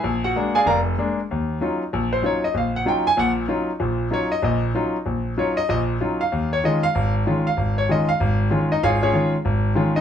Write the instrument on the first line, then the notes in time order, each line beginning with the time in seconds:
grand piano
Already playing: G#4 G#5
0.04 A#1
0.24 F#4 F#5
0.36 G#3 A#3 D4
0.55 G#4 D5 F5 G#5
0.66 F1 A#4 D5 F5 A#5
0.98 G#3 A#3 D4
1.31 D#2
1.61 F#3 C#4 D#4 F4
1.93 A#1
2.13 C5
2.22 F#3 C#4 D#4 F4 C#5
2.44 D#5
2.54 A#1 F5
2.76 F#5
2.85 F#3 C#4 D#4 F4 G5
3.07 G#5
3.17 A#1 A#2 F#5
3.48 F#3 C#4 D#4 F4
3.80 A#1 A#2
4.11 F#3 C#4 D#4 F4 C#5
4.32 D#5
4.42 A#1 A#2 D#5
4.75 F#3 C#4 D#4 F4
5.06 A#1
5.37 F#3 C#4 D#4 F4 C#5
5.57 D#5
5.69 A#1 A#2 D#5
6.01 F#3 C#4 D#4 F4
6.21 F5
6.32 D#2
6.53 C#5
6.64 D#3 G#3 C#4 F4 D#5
6.83 F5
6.95 G#1
7.26 D#3 G#3 C#4 F4
7.47 F5
7.57 G#1
7.78 C#5
7.89 D#3 G#3 C#4 F4 D#5
8.09 F5
8.20 G#1
8.50 D#3 G#3 C#4 F4
8.72 D#4 D#5
8.83 G#1 F4 G#4 C#5 F5
9.03 C#4 F4 G#4 C#5
9.13 D#3 G#3 C#4 F4
9.45 G#1
9.75 D#3 G#3 C#4 F4
9.96 D#4 D#5